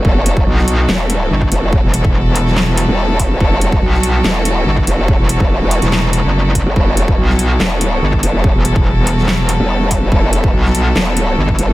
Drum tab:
HH |--x---x---x---x-|--x---x---x---x-|--x---x---x---x-|--x---xx--x---x-|
CP |--------x-------|--------x-------|--------x-------|--------x-------|
SD |-----o--o-------|-------oo-------|-----o--o-------|-------oo-------|
BD |o--o---------o--|o--o----------o-|o--o---------o--|o--o----------o-|

HH |--x---x---x---x-|--x---x---x---x-|--x---x---x---x-|
CP |--------x-------|--------x-------|--------x-------|
SD |-----o--o-------|-------oo-------|-----o--o-------|
BD |o--o---------o--|o--o----------o-|o--o---------o--|